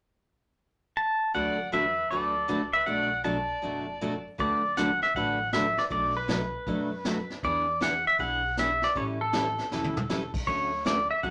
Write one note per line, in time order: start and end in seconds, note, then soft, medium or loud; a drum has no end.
0.97 1.34 A5 medium
1.34 1.65 D2 medium
1.34 1.56 D3 medium
1.34 1.56 F#3 medium
1.34 1.56 A3 medium
1.34 1.56 D4 medium
1.34 1.57 F#4 medium
1.34 1.57 B4 medium
1.34 1.70 D5 medium
1.34 1.70 F#5 medium
1.72 2.05 E2 medium
1.72 1.84 D3 medium
1.72 1.84 F#3 medium
1.72 1.84 A3 medium
1.72 1.85 D4 medium
1.72 1.84 F#4 medium
1.72 1.85 B4 medium
1.72 2.08 B4 medium
1.72 2.08 E5 medium
2.10 2.43 D2 medium
2.10 2.33 D3 medium
2.10 2.33 F#3 medium
2.10 2.33 A3 medium
2.10 2.33 D4 medium
2.10 2.34 F#4 medium
2.10 2.69 A4 medium
2.10 2.33 B4 medium
2.10 2.75 D5 medium
2.48 2.81 C#2 medium
2.48 2.60 D3 medium
2.48 2.60 F#3 medium
2.48 2.60 A3 medium
2.48 2.60 D4 medium
2.48 2.60 F#4 medium
2.48 2.60 B4 medium
2.73 2.86 B4 medium
2.73 2.86 E5 medium
2.86 3.48 B1 medium
2.86 3.08 B2 medium
2.86 3.09 F#3 medium
2.86 3.09 A3 medium
2.86 3.09 D4 medium
2.86 3.09 F#4 medium
2.86 3.22 D5 medium
2.86 3.22 F#5 medium
3.24 3.36 B2 medium
3.24 3.36 F#3 medium
3.24 3.36 A3 medium
3.24 3.36 D4 medium
3.24 3.37 F#4 medium
3.24 4.21 D5 medium
3.24 4.21 A5 medium
3.62 4.24 F#1 medium
3.62 3.84 B2 medium
3.62 3.85 F#3 soft
3.62 3.85 A3 medium
3.62 3.85 D4 medium
3.62 3.85 F#4 medium
4.01 4.13 B2 medium
4.01 4.13 F#3 medium
4.01 4.13 A3 medium
4.01 4.13 D4 medium
4.01 4.13 F#4 medium
4.38 5.00 D2 medium
4.38 4.60 D3 medium
4.38 4.61 F#3 medium
4.38 4.61 A3 medium
4.38 4.61 D4 medium
4.38 4.61 F#4 medium
4.38 4.61 B4 medium
4.38 4.79 D5 medium
4.38 brush sweep medium
4.38 kick soft
4.77 4.89 D3 medium
4.77 4.89 F#3 medium
4.77 4.89 A3 medium
4.77 4.89 D4 medium
4.77 4.89 F#4 medium
4.77 4.90 B4 medium
4.77 5.02 F#5 medium
4.77 snare medium
4.77 hi-hat pedal medium
5.01 5.15 E5 medium
5.01 snare soft
5.15 5.76 A1 medium
5.15 5.37 D3 soft
5.15 5.38 F#3 medium
5.15 5.38 A3 medium
5.15 5.38 D4 medium
5.15 5.38 F#4 medium
5.15 5.38 B4 medium
5.15 5.51 F#5 medium
5.15 brush sweep soft
5.15 kick soft
5.53 5.65 D3 medium
5.53 5.65 F#3 medium
5.53 5.65 A3 medium
5.53 5.65 D4 medium
5.53 5.65 F#4 medium
5.53 5.65 B4 medium
5.53 5.78 E5 medium
5.53 snare medium
5.53 hi-hat pedal medium
5.77 5.84 D5 medium
5.77 snare soft
5.90 6.52 B1 medium
5.90 6.13 B2 medium
5.90 6.13 F#3 medium
5.90 6.13 A3 medium
5.90 6.13 D4 medium
5.90 6.13 F#4 medium
5.90 6.14 D5 medium
5.90 brush sweep medium
5.90 kick soft
6.17 7.30 B4 medium
6.28 6.40 B2 medium
6.28 6.41 F#3 medium
6.28 6.41 A3 medium
6.28 6.41 D4 medium
6.28 6.41 F#4 medium
6.28 snare medium
6.28 hi-hat pedal medium
6.67 7.28 F#2 medium
6.67 6.89 B2 medium
6.67 6.89 F#3 medium
6.67 6.89 A3 medium
6.67 6.89 D4 medium
6.67 6.89 F#4 medium
6.67 brush sweep soft
6.67 kick soft
7.05 7.17 B2 medium
7.05 7.17 F#3 medium
7.05 7.17 A3 medium
7.05 7.17 D4 medium
7.05 7.17 F#4 medium
7.05 snare medium
7.05 hi-hat pedal medium
7.30 snare soft
7.43 8.04 E2 medium
7.43 7.65 E3 medium
7.43 7.66 B3 medium
7.43 7.66 D4 medium
7.43 7.66 G#4 medium
7.43 7.83 D5 medium
7.43 brush sweep soft
7.43 kick soft
7.81 7.92 E3 medium
7.81 7.93 B3 medium
7.81 7.93 D4 medium
7.81 7.93 G#4 medium
7.81 8.07 F#5 medium
7.81 snare medium
7.81 hi-hat pedal medium
8.07 8.19 E5 medium
8.18 8.80 B1 medium
8.18 8.41 E3 medium
8.18 8.41 B3 medium
8.18 8.42 D4 medium
8.18 8.42 G#4 medium
8.18 8.59 F#5 medium
8.18 brush sweep soft
8.18 kick soft
8.57 8.69 E3 medium
8.57 8.70 B3 medium
8.57 8.70 D4 medium
8.57 8.70 G#4 medium
8.57 8.84 E5 medium
8.57 snare medium
8.57 hi-hat pedal medium
8.82 8.97 D5 medium
8.82 snare soft
8.95 9.56 A1 medium
8.95 9.17 E3 medium
8.95 9.17 G3 medium
8.95 9.18 C#4 medium
8.95 9.18 E4 medium
8.95 9.18 A4 medium
8.95 9.04 C#5 medium
8.95 brush sweep soft
8.95 kick soft
9.21 10.31 A4 medium
9.33 9.45 E3 medium
9.33 9.45 G3 medium
9.33 9.45 C#4 medium
9.33 9.45 E4 medium
9.33 9.45 A4 medium
9.33 snare medium
9.33 hi-hat pedal medium
9.58 snare soft
9.71 10.32 E1 medium
9.71 9.94 E3 medium
9.71 9.94 G3 medium
9.71 9.94 C#4 medium
9.71 9.94 E4 medium
9.71 9.94 A4 medium
9.71 snare soft
9.84 high tom medium
9.97 mid tom medium
10.09 10.21 E3 medium
10.09 10.21 G3 medium
10.09 10.21 C#4 medium
10.09 10.22 E4 medium
10.09 10.22 A4 medium
10.09 snare medium
10.09 hi-hat pedal medium
10.34 kick medium
10.34 crash medium
10.47 11.08 D2 medium
10.47 10.69 D3 soft
10.47 10.69 F#3 medium
10.47 10.70 A3 medium
10.47 10.70 C#4 medium
10.47 10.70 F#4 medium
10.47 10.86 C#5 medium
10.47 brush sweep medium
10.47 kick soft
10.85 10.97 D3 medium
10.85 10.97 F#3 medium
10.85 10.97 A3 medium
10.85 10.98 C#4 medium
10.85 10.98 F#4 medium
10.85 11.10 D5 medium
10.85 snare medium
10.85 hi-hat pedal soft
11.11 11.23 E5 medium
11.23 11.30 G1 medium
11.23 11.30 D3 soft
11.23 11.30 F#3 medium
11.23 11.30 A3 medium
11.23 11.30 C#4 medium
11.23 11.30 F#4 medium
11.23 11.30 F#5 medium
11.23 brush sweep soft
11.23 kick soft